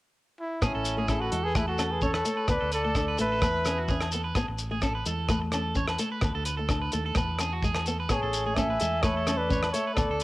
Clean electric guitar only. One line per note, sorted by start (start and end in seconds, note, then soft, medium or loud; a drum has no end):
0.63 0.74 G#4 medium
0.75 0.97 A4 medium
0.98 1.09 G#4 medium
1.10 1.21 A4 medium
1.22 1.32 B4 medium
1.33 1.55 A4 medium
1.56 1.67 B4 medium
1.68 1.78 A4 medium
1.79 2.01 A4 medium
2.02 2.13 C#5 medium
2.14 2.25 B4 medium
2.26 2.37 A4 medium
2.37 2.60 B4 medium
2.61 2.72 A4 medium
2.73 2.84 B4 medium
2.84 3.07 A4 medium
3.08 3.19 B4 medium
3.20 3.31 A4 medium
3.32 3.42 A4 medium
3.42 3.65 B4 medium
3.66 3.78 G#4 medium
3.78 3.89 F#4 medium
3.89 4.12 G#4 medium
4.12 4.24 A4 medium
4.24 4.35 B4 medium
4.36 4.48 G#4 medium
4.48 muted clean electric guitar stroke medium
4.71 4.82 G#4 medium
4.83 4.94 A4 medium
4.95 5.06 B4 medium
5.07 5.29 A4 medium
5.30 5.41 B4 medium
5.42 muted clean electric guitar stroke medium
5.53 5.75 A4 medium
5.77 5.88 C#5 medium
5.88 5.99 B4 medium
6.00 6.11 A4 medium
6.12 6.34 B4 medium
6.35 6.45 A4 medium
6.46 6.57 B4 medium
6.57 6.80 A4 medium
6.82 6.93 B4 medium
6.93 7.05 A4 medium
7.06 7.17 A4 medium
7.17 7.39 B4 medium
7.41 7.52 G#4 medium
7.53 7.63 F#4 medium
7.64 7.86 G#4 medium
7.88 7.99 A4 medium
8.00 8.10 B4 medium
8.11 8.22 G#4 medium
8.23 8.45 A4 medium
8.47 8.57 G#4 medium
8.58 8.69 A4 medium
8.70 8.80 B4 medium
8.81 9.03 A4 medium
9.04 9.16 B4 medium
9.17 9.27 A4 medium
9.29 9.50 A4 medium
9.52 9.63 C#5 medium
9.63 9.74 B4 medium
9.75 9.86 A4 medium
9.87 10.09 B4 medium
10.11 10.21 A4 medium